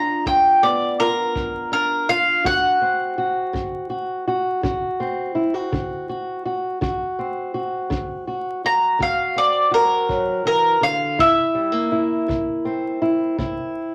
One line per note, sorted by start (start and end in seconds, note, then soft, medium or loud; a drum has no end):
0.00 0.62 B3 medium
0.00 1.71 D4 medium
0.00 0.26 F4 medium
0.00 0.25 A#5 medium
0.26 0.92 G2 medium
0.26 0.99 F4 medium
0.26 0.62 G5 medium
0.26 kick medium
0.63 2.40 B3 medium
0.63 0.98 D5 medium
1.00 2.08 F4 medium
1.00 1.70 A#4 medium
1.36 2.01 G2 medium
1.36 kick medium
1.72 2.81 D4 medium
1.72 2.08 A#4 medium
2.09 2.41 F4 medium
2.09 2.44 F5 medium
2.44 3.10 D3 medium
2.44 3.17 F#4 medium
2.44 4.60 F#5 medium
2.44 kick medium
2.81 5.00 C4 medium
3.18 3.89 F#4 medium
3.53 4.19 D3 medium
3.53 kick medium
3.90 4.27 F#4 medium
4.28 4.63 F#4 medium
4.63 5.29 D3 medium
4.63 5.34 F#4 medium
4.63 kick medium
5.00 6.84 C4 medium
5.35 5.54 E4 medium
5.54 6.08 F#4 medium
5.72 6.38 D3 medium
5.72 kick medium
6.09 6.44 F#4 medium
6.45 6.78 F#4 medium
6.81 7.47 D3 medium
6.81 7.53 F#4 medium
6.81 kick medium
7.19 9.35 C4 soft
7.54 8.26 F#4 medium
7.90 8.56 D3 medium
7.90 kick medium
8.27 8.63 F#4 medium
8.64 8.99 F#4 medium
8.64 9.00 A#5 medium
8.99 9.65 D3 medium
8.99 9.70 F#4 medium
8.99 9.37 F5 medium
8.99 kick medium
9.36 11.14 C4 medium
9.36 9.73 D5 medium
9.71 11.14 F#4 medium
9.71 10.45 A#4 medium
10.09 10.45 F#3 medium
10.09 kick medium
10.45 10.81 E3 medium
10.45 10.82 A#4 medium
10.81 11.18 D3 medium
10.81 11.18 F5 loud
11.18 11.84 C3 medium
11.18 11.91 E4 medium
11.18 13.34 E5 loud
11.18 kick medium
11.55 11.72 G3 medium
11.72 13.74 A#3 soft
11.92 13.00 E4 medium
12.28 12.94 C3 medium
12.28 kick medium
12.65 13.95 C4 medium
13.02 13.38 E4 medium
13.39 13.95 C3 medium
13.39 13.95 E4 medium
13.39 kick medium